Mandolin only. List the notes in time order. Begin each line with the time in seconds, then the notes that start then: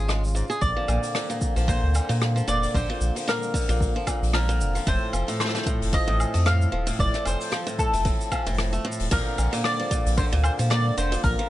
0.61 D5
1.69 C5
2.48 D5
2.75 C5
3.28 A#4
4.34 A#4
4.88 C5
5.41 C5
5.94 D#5
6.47 F5
7.00 D5
7.27 C5
7.79 A4
9.12 A#4
9.65 D5
10.17 C5
10.44 C5
10.70 D5
10.98 C5
11.24 A#4